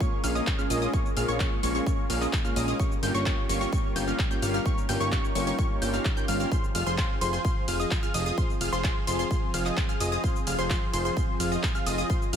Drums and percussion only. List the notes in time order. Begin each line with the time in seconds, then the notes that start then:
0.00 kick, cabasa
0.24 open hi-hat, cabasa
0.36 cabasa
0.47 kick, clap, cabasa
0.59 cabasa
0.70 open hi-hat, cabasa
0.82 cabasa
0.93 kick, cabasa
1.06 cabasa
1.17 open hi-hat, cabasa
1.29 cabasa
1.40 kick, clap, cabasa
1.63 open hi-hat, cabasa
1.76 cabasa
1.87 kick, cabasa
2.10 open hi-hat, cabasa
2.21 clap, cabasa
2.33 kick, clap, cabasa
2.45 cabasa
2.56 open hi-hat, cabasa
2.69 cabasa
2.80 kick, cabasa
2.92 cabasa
3.03 open hi-hat, cabasa
3.15 cabasa
3.26 kick, clap, cabasa
3.49 open hi-hat, cabasa
3.62 cabasa
3.73 kick, cabasa
3.96 open hi-hat, cabasa
4.08 cabasa
4.19 kick, clap, cabasa
4.31 cabasa
4.42 open hi-hat, cabasa
4.55 cabasa
4.66 kick, cabasa
4.78 cabasa
4.89 open hi-hat, cabasa
5.01 cabasa
5.12 kick, clap, cabasa
5.24 cabasa
5.35 open hi-hat, cabasa
5.47 open hi-hat, cabasa
5.59 kick, cabasa
5.82 open hi-hat, cabasa
5.93 clap, cabasa
6.05 kick, clap, cabasa
6.17 cabasa
6.28 open hi-hat, cabasa
6.41 cabasa
6.52 kick, cabasa
6.64 cabasa
6.75 open hi-hat, ride, cabasa
6.87 cabasa
6.98 kick, clap, cabasa
7.21 open hi-hat, ride, cabasa
7.34 cabasa
7.45 kick, cabasa
7.68 open hi-hat, ride, cabasa
7.80 cabasa
7.91 kick, clap, cabasa
8.03 cabasa
8.14 open hi-hat, ride, cabasa
8.27 cabasa
8.38 kick, cabasa
8.50 cabasa
8.61 open hi-hat, ride, cabasa
8.73 cabasa
8.84 kick, clap, cabasa
9.07 open hi-hat, ride, cabasa
9.20 cabasa
9.31 kick, cabasa
9.54 open hi-hat, ride, cabasa
9.66 clap, cabasa
9.77 kick, clap, cabasa
9.89 cabasa
10.00 open hi-hat, ride, cabasa
10.13 cabasa
10.24 kick, cabasa
10.36 cabasa
10.47 open hi-hat, ride, cabasa
10.59 cabasa
10.70 kick, clap, cabasa
10.94 open hi-hat, ride, cabasa
11.06 cabasa
11.17 kick, cabasa
11.40 open hi-hat, ride, cabasa
11.52 cabasa
11.63 kick, clap, cabasa
11.76 cabasa
11.86 open hi-hat, ride, cabasa
11.99 cabasa
12.10 kick, cabasa
12.22 cabasa
12.33 open hi-hat, ride